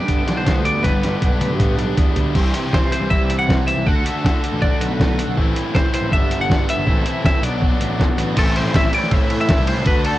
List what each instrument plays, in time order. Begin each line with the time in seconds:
Already playing: distorted electric guitar G2 D3 G3 B3 D4 G4, overdriven electric guitar D4 G4, clean electric guitar D5
0.00 picked electric bass G2
0.08 overdriven electric guitar B3, kick, closed hi-hat
0.27 picked electric bass B1, overdriven electric guitar D4, snare, closed hi-hat
0.37 clean electric guitar C5
0.46 overdriven electric guitar B3, kick, snare, closed hi-hat
0.56 picked electric bass D2
0.65 overdriven electric guitar G3, clean electric guitar D5, closed hi-hat
0.83 picked electric bass G1, distorted electric guitar G2 D3 G3 B3 D4 G4, clean electric guitar B4, kick, snare, closed hi-hat
1.03 overdriven electric guitar G4, snare, closed hi-hat
1.22 picked electric bass B1, overdriven electric guitar D4, kick, closed hi-hat
1.41 overdriven electric guitar G4, closed hi-hat, high tom
1.51 picked electric bass G2
1.60 overdriven electric guitar B3, kick, closed hi-hat, mid tom
1.78 picked electric bass B1, overdriven electric guitar D4, closed hi-hat
1.97 picked electric bass E2, overdriven electric guitar B3, kick, closed hi-hat, floor tom
2.16 picked electric bass D2, overdriven electric guitar G3, closed hi-hat, floor tom
2.34 picked electric bass C2, distorted electric guitar C3 E3 G3 C4 G4, overdriven electric guitar E4 C5, kick, crash
2.54 closed hi-hat
2.73 clean electric guitar C5, kick, snare
2.92 clean electric guitar C5, closed hi-hat
3.01 picked electric bass C2
3.10 distorted electric guitar C3 E3 G3 C4 G4, clean electric guitar E5, kick
3.30 closed hi-hat
3.39 clean electric guitar F#5
3.49 kick, snare
3.67 clean electric guitar E5, closed hi-hat
3.77 picked electric bass C2
3.85 picked electric bass D2, distorted electric guitar D3 A3 D4 F#4, overdriven electric guitar A4, clean electric guitar F#5, kick
4.06 clean electric guitar E5, closed hi-hat
4.25 kick, snare
4.44 closed hi-hat
4.52 picked electric bass A1
4.62 distorted electric guitar D3 A3 D4 F#4, clean electric guitar D5, kick
4.81 picked electric bass B1, clean electric guitar B4, closed hi-hat
5.00 kick, snare
5.19 closed hi-hat
5.28 picked electric bass B1
5.36 picked electric bass A1, distorted electric guitar A2 E3 A3 C4 E4, kick
5.56 closed hi-hat
5.75 clean electric guitar C5, kick, snare
5.94 clean electric guitar C5, closed hi-hat
6.02 picked electric bass A1
6.11 picked electric bass G1, distorted electric guitar G2 D3 G3 B3 D4 G4, clean electric guitar E5, kick
6.31 closed hi-hat
6.41 clean electric guitar F#5
6.50 kick, snare
6.69 clean electric guitar E5, closed hi-hat
6.78 picked electric bass G1
6.86 picked electric bass A1, distorted electric guitar A2 E3 C4 E4 A4, overdriven electric guitar A3, kick
7.06 closed hi-hat
7.25 clean electric guitar E5, kick, snare
7.42 picked electric bass B1, distorted electric guitar B2 F#3 B3 D4 F#4, clean electric guitar D5, closed hi-hat
7.62 kick
7.80 picked electric bass A1, closed hi-hat
8.00 picked electric bass B1, kick, snare
8.17 picked electric bass A1, distorted electric guitar B2 F#3 B3 D4 F#4, closed hi-hat
8.36 picked electric bass A1, distorted electric guitar A2 E3 A3 C4 E4, clean electric guitar A4, kick, crash, ride
8.56 clean electric guitar C5, ride
8.74 picked electric bass A1, distorted electric guitar A2 E3 A3 C4 E4, clean electric guitar E5, kick, snare, ride
8.93 distorted electric guitar A2 E3 A3 C4 E4, clean electric guitar D5, ride
9.03 snare
9.11 picked electric bass A2, distorted electric guitar A2 E3 A3 C4 E4, clean electric guitar E5, kick, ride
9.30 ride
9.41 clean electric guitar E5
9.49 distorted electric guitar A2 E3 A3 C4 E4, kick, snare, ride
9.59 picked electric bass C2
9.67 distorted electric guitar A2 E3 A3 C4 E4, clean electric guitar C5, ride
9.77 picked electric bass C2
9.86 picked electric bass D2, distorted electric guitar D3 A3 D4 F#4, clean electric guitar B4, kick, ride
10.05 clean electric guitar A4, ride